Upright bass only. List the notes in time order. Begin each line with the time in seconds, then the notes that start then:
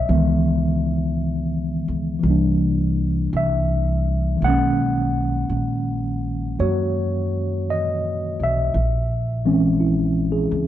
0.09 C#2
1.88 C#2
2.23 C2
3.33 C2
4.42 B1
5.49 A#1
6.59 F#2
8.40 B1
8.74 A#1
10.51 C#2